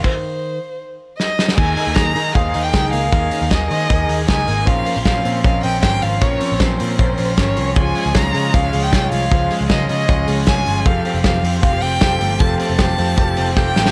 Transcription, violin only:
X:1
M:4/4
L:1/16
Q:1/4=155
K:Ebmix
V:1 name="Violin"
c8 z4 e4 | a4 b4 f3 g3 f2- | f4 e2 e4 z2 a4 | f4 f4 f2 g2 g2 f2 |
d4 c8 d4 | a4 b4 f3 g3 f2- | f4 e2 e4 z2 a4 | f4 f4 f2 g6 |
=a2 a8- a2 g4 |]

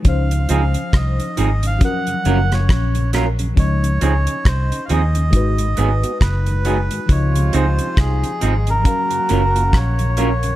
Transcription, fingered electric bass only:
X:1
M:4/4
L:1/16
Q:"Swing 16ths" 1/4=68
K:Db
V:1 name="Fingered electric bass" clef=bass
D,,2 D,, z C,, z A,,,2 z2 G,,,2 B,,,4 | D,,2 D,, z C,, z E,,2 A,,,2 A,,, z G,,,3 z | D,,2 D,, z C,, z A,,,2 z2 G,,,2 B,,,4 |]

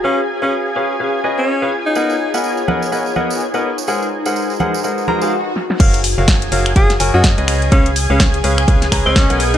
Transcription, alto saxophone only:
X:1
M:4/4
L:1/16
Q:"Swing 16ths" 1/4=125
K:F#
V:1 name="Alto saxophone"
C z2 C z6 z C3 z D- | D3 z12 z | z16 | z8 G z2 F z4 |
C z2 C z6 z C3 z D |]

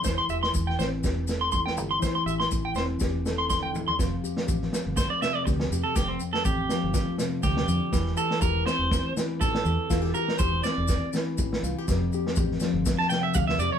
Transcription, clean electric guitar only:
X:1
M:4/4
L:1/16
Q:"Swing 16ths" 1/4=122
K:F
V:1 name="Clean electric guitar"
c c' e c' z g c z4 c' c' g z c' | c c' e c' z g c z4 c' c' g z c' | z8 c d e d z3 A | G C z A G6 z2 G4- |
G2 A2 B2 c4 z2 A4- | A2 B2 c2 d4 z6 | z8 z a g e f e d _d |]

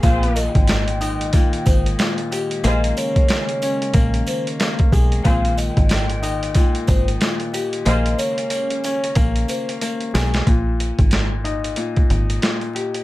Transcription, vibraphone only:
X:1
M:4/4
L:1/16
Q:"Swing 16ths" 1/4=92
K:Ab
V:1 name="Vibraphone"
f2 e6 z2 c z4 z | e2 d6 z2 c z4 z | f2 e6 z2 c z4 z | e2 d6 z2 c z4 z |
z16 |]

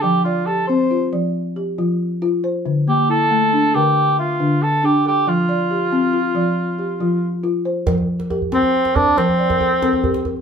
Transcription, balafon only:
X:1
M:12/8
L:1/8
Q:3/8=92
K:F
V:1 name="Balafon"
A d G2 F d2 G F3 c- | c B, E2 D B2 e D3 A- | A d G2 F d2 G F3 c- | c z G3 c2 d A A G2 |]
V:2 name="Balafon" clef=bass
F,2 z C2 F,2 z F,2 F2 | D,2 z A,2 D,2 z D,2 D2 | F,2 z C2 F,2 z F,2 F2 | F,2 z C2 z F,2 z C2 z |]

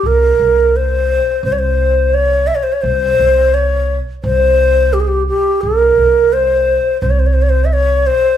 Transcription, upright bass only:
X:1
M:4/4
L:1/8
Q:1/4=86
K:none
V:1 name="Upright bass" clef=bass
C,, C,,3 C,,4 | C,, C,,3 C,,4 | C,, C,,3 C,,4 |]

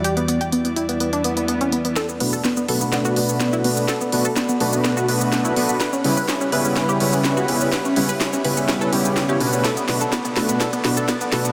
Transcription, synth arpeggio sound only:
X:1
M:4/4
L:1/16
Q:1/4=125
K:Bm
V:1 name="Synth arpeggio sound"
G B, B, G B, B, E B, B, D B, B, B, C B, B, | A B, B, A B, B, A B, B, F B, B, B, E B, B, | A B, B, A B, B, A B, B, F B, B, B, E B, B, | B C C B C C B C C G C C C F C C |
B C C B C C B C C A C C C G C C | A B, B, A B, B, A B, A B, B, A B, B, A B, |]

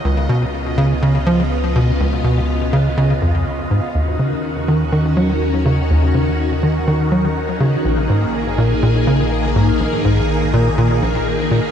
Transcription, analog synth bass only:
X:1
M:4/4
L:1/8
Q:1/4=123
K:Ebm
V:1 name="Analog synth bass" clef=bass
D,, C, z D, D, F, z C, | D,, C, z D, D, F,, z A,, | E,, D, z E, E, G, z D, | E,, D, z E, E, G, z D, |
B,,, A,, z B,, B,, D, z A,, | B,,, A,, z B,, B,, B,,, z B,, |]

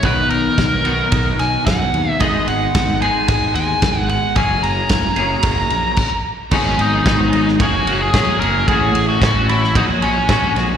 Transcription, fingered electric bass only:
X:1
M:4/4
L:1/8
Q:1/4=111
K:G#m
V:1 name="Fingered electric bass" clef=bass
B,,, B,,, B,,, B,,, B,,, B,,, F,, D,, | G,,, G,,, G,,,2 G,,, D,, G,,,2 | F,,, F,,, F,,, F,,, F,,, A,,, z2 | G,,, G,,, G,,,2 F,,, F,,, A,,, F,,, |
=A,,, A,,, A,,,2 ^A,,,2 A,,, A,,, |]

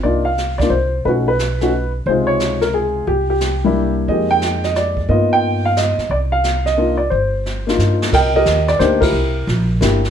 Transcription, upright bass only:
X:1
M:3/4
L:1/8
Q:"Swing" 1/4=178
K:Cm
V:1 name="Upright bass" clef=bass
C,,4 C,,2 | =B,,,6 | _D,,6 | C,,6 |
F,,6 | G,,4- G,, z | C,,6 | G,,,4 G,,2 |
C,,2 E,,2 D,,2 | C,,2 B,,,2 G,,,2 |]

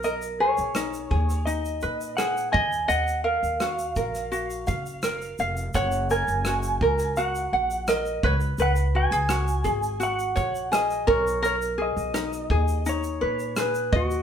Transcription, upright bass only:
X:1
M:4/4
L:1/16
Q:1/4=84
K:G#dor
V:1 name="Upright bass" clef=bass
B,,,3 B,,,3 D,,4 A,,4 D,,2 | D,,3 D,,3 A,,,4 F,,,4 E,,,2 | F,,,3 F,,,3 C,,4 A,,,4 C,,2 | C,,3 C,,3 G,,,4 A,,,4 B,,,2- |
B,,,3 B,,,3 D,,4 A,,4 D,,2 |]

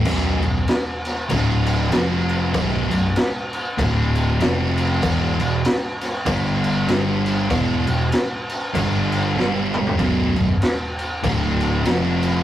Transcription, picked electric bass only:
X:1
M:4/4
L:1/8
Q:"Swing" 1/4=97
K:Bphr
V:1 name="Picked electric bass" clef=bass
B,,,, B,,,, z2 D,,,2 =F,,,2 | B,,,, B,,,, z2 D,,,2 =F,,,2 | E,,, E,,, z2 G,,,2 G,,,2 | E,,, E,,, z2 G,,,2 G,,,2 |
B,,,, B,,,, z2 D,,,2 =F,,,2 |]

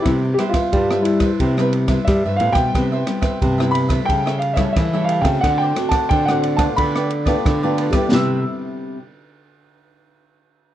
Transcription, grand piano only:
X:1
M:4/4
L:1/16
Q:1/4=89
K:C
V:1 name="Grand piano"
E2 G F3 E6 e2 f g- | g6 b2 g2 f e e2 f g | ^f g2 a g f2 a b6 z2 | e'2 z12 z2 |]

